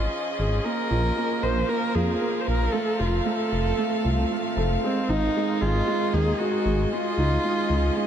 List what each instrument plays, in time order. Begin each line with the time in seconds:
Already playing: string quartet F3 C#4 G#4 D#5
0.38 detuned saw bass G#1, viola G#4
0.65 felt piano A#3, viola A#4
0.90 detuned saw bass A#1, felt piano F4
1.17 felt piano A#3
1.43 detuned saw bass A#1, felt piano A#4, viola C5
1.56 string quartet A#4 F5
1.69 felt piano A#3, viola A#4
1.95 detuned saw bass F2, felt piano F4, viola G#4
2.21 felt piano A#3
2.40 viola C5
2.47 detuned saw bass A#1, viola A#4, felt piano A#4
2.73 felt piano A3, viola A4
2.97 detuned saw bass F1, felt piano F4, viola F4, string quartet A4
3.25 felt piano A3, viola A4
3.30 string quartet C4
3.52 detuned saw bass F1, felt piano A4
3.78 felt piano A3
4.04 detuned saw bass C2, felt piano F4
4.31 felt piano A3
4.57 detuned saw bass F1, felt piano A4
4.82 string quartet D#3, felt piano G#3, viola C4
5.09 detuned saw bass G#1, viola D#4, felt piano D#4
5.37 felt piano G#3
5.61 detuned saw bass G#1, viola F4, felt piano G#4
5.76 string quartet G#4 D#5
5.88 felt piano G#3
6.14 detuned saw bass D#2, felt piano D#4, viola G#4
6.39 felt piano G#3, viola F#4
6.65 detuned saw bass G#1, felt piano G#4
6.91 string quartet F3, felt piano G#3, viola F4
7.18 detuned saw bass C#2, felt piano D#4
7.44 felt piano G#3, string quartet C#4
7.70 detuned saw bass C#2, felt piano F4
7.97 felt piano G#3